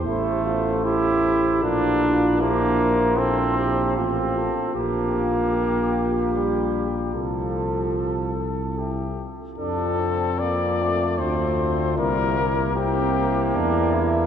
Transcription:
<<
  \new Staff \with { instrumentName = "Trumpet" } { \time 3/4 \key f \major \tempo 4 = 76 c''2 bes'4 | c''2~ c''8 r8 | g'2. | a'2 g'8 r8 |
a'4 d''4 c''4 | bes'4 g'4. r8 | }
  \new Staff \with { instrumentName = "Flugelhorn" } { \time 3/4 \key f \major e'8 f'8 g'4 f'4 | g'8 bes'8 a'8 g'8 f'8 a'8 | g'8 r8 f'8 g'4. | a'2~ a'8 r8 |
d'8 c'8 bes8 a4. | g8 bes8 c'4 d'8 e'8 | }
  \new Staff \with { instrumentName = "French horn" } { \time 3/4 \key f \major a'2 f'4 | e'2 f'4~ | f'2.~ | f'4. r8 e'8 r8 |
f'2 f'4 | e'4 e'2 | }
  \new Staff \with { instrumentName = "Trombone" } { \time 3/4 \key f \major a4 e'4 d'4 | bes4 c'4 c'4 | bes2 g8 r8 | f2 r4 |
c'2 c'4 | bes4 bes2 | }
  \new Staff \with { instrumentName = "Bass trombone" } { \clef bass \time 3/4 \key f \major a,,2 bes,,4~ | bes,,2 a,,8 r8 | bes,,2. | c,2~ c,8 r8 |
f,2 d,4 | c,2 e,4 | }
>>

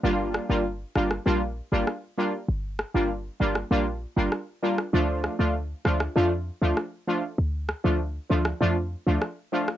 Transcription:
<<
  \new Staff \with { instrumentName = "Synth stab" } { \time 4/4 \key g \minor \tempo 4 = 98 <g bes d' f'>8. <g bes d' f'>16 r8 <g bes d' f'>16 r16 <g bes d' f'>16 r8 <g bes d' f'>16 r8 <g bes d' f'>16 r16 | r8. <g bes d' f'>16 r8 <g bes d' f'>16 r16 <g bes d' f'>16 r8 <g bes d' f'>16 r8 <g bes d' f'>16 r16 | <f a d' f'>8. <f a d' f'>16 r8 <f a d' f'>16 r16 <f a d' f'>16 r8 <f a d' f'>16 r8 <f a d' f'>16 r16 | r8. <f a d' f'>16 r8 <f a d' f'>16 r16 <f a d' f'>16 r8 <f a d' f'>16 r8 <f a d' f'>16 r16 | }
  \new Staff \with { instrumentName = "808-style bass" } { \clef bass \time 4/4 \key g \minor g,,8. g,,8. g,,8 bes,,8. g,,16 r4 | g,,8. g,,8. g,,8 bes,,8. g,,16 r4 | d,8. d,8. d,8 f,8. d,16 r4 | d,8. d,8. d,8 f,8. d,16 r4 | }
  \new DrumStaff \with { instrumentName = "Drums" } \drummode { \time 4/4 r8 ss8 r8 ss16 ss16 r4 ss4 | r8 ss8 r8. ss16 r4 ss8. ss16 | r8 ss8 r8 ss16 ss16 r4 ss4 | r8 ss8 r8. ss16 r4 ss8. ss16 | }
>>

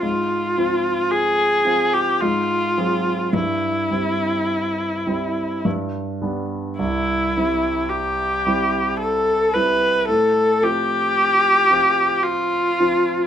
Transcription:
<<
  \new Staff \with { instrumentName = "Viola" } { \time 3/4 \key c \major \tempo 4 = 55 f'4 aes'8. g'16 f'4 | e'2 r4 | e'4 g'4 a'8 b'8 | a'8 g'4. f'4 | }
  \new Staff \with { instrumentName = "Grand piano" } { \time 3/4 \key c \major aes,8 <f c' f'>4 <f c' f'>8 aes,8 <ges c' aes'>8 | g,8 <g c' e'>4 <g c' e'>8 g,8 <g b d'>8 | c,8 <g c' e'>4 <g c' e'>4 <g c' e'>8 | a,8 <f c' f'>4 <f c' f'>4 <f c' f'>8 | }
>>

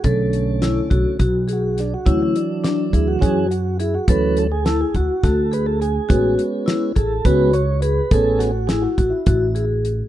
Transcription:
<<
  \new Staff \with { instrumentName = "Vibraphone" } { \time 7/8 \key d \lydian \tempo 4 = 104 a'4 e'8 fis'8 fis'8 gis'4 | e'4 d'8 gis'8 fis'4 gis'8 | a'4 e'8 fis'8 fis'8 gis'4 | fis'4 e'8 gis'8 fis'4 gis'8 |
a'4 e'8 fis'8 fis'8 gis'4 | }
  \new Staff \with { instrumentName = "Tonewheel organ" } { \time 7/8 \key d \lydian r2 r8 fis'8 d'16 fis'16~ | fis'16 cis'16 d'4 e'16 fis'16 gis'8 fis'8 e'16 fis'16 | b'8 a'16 gis'16 a'16 gis'16 fis'8 a'8 b'16 a'16 gis'8~ | gis'8 r4 a'8 b'8 cis''8 b'8 |
a'8 fis'8 gis'16 fis'8 e'4 r8. | }
  \new Staff \with { instrumentName = "Tonewheel organ" } { \time 7/8 \key d \lydian <d a cis'>4. <d a cis'>8 r4. | <e fis cis'>2 <e fis cis'>8 r4 | <e fis cis'>8 r2. | <gis b cis'>4. r8 <gis b cis'>8 r4 |
<b cis' gis'>8 r2. | }
  \new Staff \with { instrumentName = "Upright bass" } { \clef bass \time 7/8 \key d \lydian b,,4. b,,16 r16 b,,4. | d,8 r4 d,8 fis,4. | d,4. d,16 r16 d,4. | a,,8 r4 a,,8 cis,4. |
a,,4. a,,16 r16 a,,4. | }
  \new DrumStaff \with { instrumentName = "Drums" } \drummode { \time 7/8 <hh bd>8 hh8 <hh sn>8 <hh bd>8 <hh bd>8 hh8 <hh sn>8 | <hh bd>8 hh8 <hh sn>8 <hh bd>8 <hh bd>8 hh8 hh8 | <hh bd>8 hh8 <hh sn>8 <hh bd>8 <hh bd sn>8 hh8 hh8 | <hh bd>8 hh8 <hh sn>8 <hh bd>8 <hh bd>8 hh8 hh8 |
<hh bd>8 <hh sn>8 <hh sn>8 <hh bd>8 <hh bd>8 hh8 hh8 | }
>>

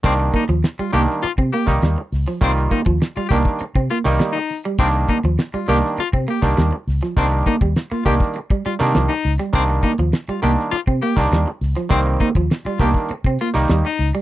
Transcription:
<<
  \new Staff \with { instrumentName = "Baritone saxophone" } { \time 4/4 \key c \minor \tempo 4 = 101 c'16 r16 ees'16 r8 f'16 g'16 r16 f'16 r16 g'8 r4 | c'16 r16 ees'16 r8 f'16 g'16 r8. f'16 r8 ees'8 r16 | c'16 r16 ees'16 r8 f'16 g'16 r16 f'16 r16 g'8 r4 | c'16 r16 ees'16 r8 f'16 g'16 r8. f'16 r8 ees'8 r16 |
c'16 r16 ees'16 r8 f'16 g'16 r16 f'16 r16 g'8 r4 | c'16 r16 ees'16 r8 f'16 g'16 r8. f'16 r8 ees'8 r16 | }
  \new Staff \with { instrumentName = "Clav" } { \clef bass \time 4/4 \key c \minor <ees g bes d'>8. r8. <ees g bes d'>8 r8. <ees g bes ees'>8 r8. | <ees g bes f'>8. r8. <ees g bes d'>8 r8. <ees g bes ees'>8 r8. | <ees g bes d'>8. r8. <ees g bes d'>8 r8. <ees g bes d'>8 r8. | <ees g bes d'>8. r8. <ees g bes d'>8 r8. <ees g bes d'>8 r8. |
<ees g bes d'>8. r8. <ees g bes d'>8 r8. <ees g bes d'>8 r8. | <ees g bes c'>8. r8. <ees g bes d'>8 r8. <ees g bes ees'>8 r8. | }
  \new Staff \with { instrumentName = "Clean electric guitar" } { \clef bass \time 4/4 \key c \minor r8 bes16 f16 r16 g16 bes16 r8 c'16 bes16 r16 g16 r8 f16 | r8 bes16 f16 r16 g16 bes16 r8 c'16 bes16 r16 g16 r8 g16 | r8 bes16 f16 r16 g16 bes16 r8 c'16 bes16 r16 g16 r8 f16 | r8 bes16 g16 r16 bes16 bes16 r8 g16 g16 r16 f16 r8 g16 |
r8 bes16 f16 r16 g16 bes16 r8 c'16 bes16 r16 g16 r8 f16 | r8 bes16 f16 r16 g16 bes16 r8 c'16 bes16 r16 g16 r8 g16 | }
  \new Staff \with { instrumentName = "Fingered electric bass" } { \clef bass \time 4/4 \key c \minor c,8 r16 ees,16 r8 c,16 r8 c16 r16 c,16 ees,16 r16 des,16 r16 | c,8 r16 ees,16 r8 c,16 r8 c16 r16 c,16 r4 | c,8 r16 ees,16 r8 c,16 r8 c16 r16 c,16 ees,16 r16 des,16 r16 | c,8 r16 ees,16 r8 c,16 r4 c16 c,16 r16 des,16 r16 |
c,8 r16 ees,16 r8 c,16 r8 c16 r16 c,16 ees,16 r16 des,16 r16 | c,8 r16 ees,16 r8 c,16 r8 c16 r16 c,16 ees,16 r16 des,16 r16 | }
  \new DrumStaff \with { instrumentName = "Drums" } \drummode { \time 4/4 <hh bd>8 <hh bd>8 <hh sn>8 hh16 sn16 hh16 bd16 hh16 <bd sn>16 <hh sn>8 <hho sn>16 sn16 | <hh bd>8 <hh bd>16 bd16 <hh sn>16 hh16 <hh bd>16 <bd sn>16 hh16 bd16 hh16 sn16 <hh sn>8 <hho sn>16 hh16 | <hh bd>8 <hh bd>8 <hh sn>16 hh16 hho16 sn16 hh16 bd16 hh16 <bd sn>16 <hh sn>8 <hho sn>16 <hh sn>16 | <hh bd>8 <hh bd>16 bd16 <hh sn>8 <hho bd>16 <bd sn>16 hh16 bd16 hh16 sn16 <hh sn>8 <hho sn>16 <hh sn>16 |
<hh bd>8 <hh bd>8 <hh sn>16 hh16 hh16 sn16 hh16 bd16 hh16 <bd sn>16 <hh sn>8 <hho sn>16 <hh sn>16 | <hh bd>8 <hh bd>16 bd16 <hh sn>16 hh16 <hho bd>16 <bd sn>16 hh16 bd16 hh16 sn16 <hh sn>8 <hho sn>8 | }
>>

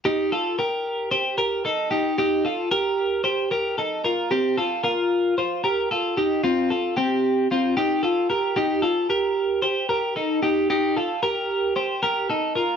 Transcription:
\new Staff \with { instrumentName = "Clean electric guitar" } { \time 4/4 \key c \dorian \tempo 4 = 113 <ees' g'>8 <f' a'>8 <g' bes'>4 <g' c''>8 <g' bes'>8 <ees' a'>8 <ees' g'>8 | <ees' g'>8 <f' a'>8 <g' bes'>4 <g' c''>8 <g' bes'>8 <ees' a'>8 <f' bes'>8 | <c' g'>8 <f' a'>8 <f' bes'>4 <f' c''>8 <g' bes'>8 <f' a'>8 <ees' g'>8 | <c' f'>8 <f' a'>8 <c' g'>4 <c' f'>8 <ees' g'>8 <f' a'>8 <g' bes'>8 |
<ees' g'>8 <f' a'>8 <g' bes'>4 <g' c''>8 <g' bes'>8 <ees' a'>8 <ees' g'>8 | <ees' g'>8 <f' a'>8 <g' bes'>4 <g' c''>8 <g' bes'>8 <ees' a'>8 <f' bes'>8 | }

